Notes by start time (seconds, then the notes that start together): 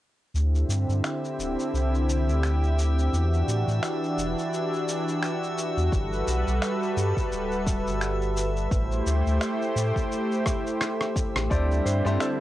0.33 D2 D3 C4 E4 G4 E5 E6, shaker
0.55 shaker
0.69 G2, shaker
0.89 G2, shaker
1.04 finger snap, shaker
1.25 shaker
1.39 D1, shaker
1.59 shaker
1.74 C2, shaker
1.95 shaker
2.09 shaker
2.28 D2, shaker
2.43 finger snap, shaker
2.64 shaker
2.79 shaker
2.99 shaker
3.13 E2 E3 D4 F#4, shaker
3.34 shaker
3.48 A2, shaker
3.68 A2, shaker
3.83 finger snap, shaker
4.03 shaker
4.18 E1, shaker
4.38 shaker
4.53 shaker
4.73 shaker
4.88 shaker
5.08 shaker
5.23 finger snap, shaker
5.43 shaker
5.58 shaker
5.77 E2, shaker
5.92 G1 G3 A4 B4, kick, shaker
6.13 shaker
6.27 B1, shaker
6.47 B1, shaker
6.62 finger snap, shaker
6.82 shaker
6.97 G2, shaker
7.17 kick, shaker
7.31 D1, shaker
7.52 shaker
7.67 kick, shaker
7.86 G1, shaker
8.01 finger snap, shaker
8.22 shaker
8.37 shaker
8.57 shaker
8.71 A1 A3 E4 G4 C5, kick, shaker
8.92 shaker
9.06 D2, shaker
9.26 D2, shaker
9.41 finger snap, shaker
9.62 shaker
9.76 A2, shaker
9.96 kick, shaker
10.12 shaker
10.32 shaker
10.46 kick, cross-stick, shaker
10.67 shaker
10.81 finger snap, cross-stick, shaker
11.01 cross-stick, shaker
11.16 kick, shaker
11.35 A1, cross-stick, shaker
11.50 D2 D3 G3 A3 C4 D4 E4 G4 C5 D5, kick, shaker
11.71 shaker
11.85 G2 C5, shaker
12.04 G2 A3 D4 E4 G4 C5, shaker
12.20 A4, finger snap, shaker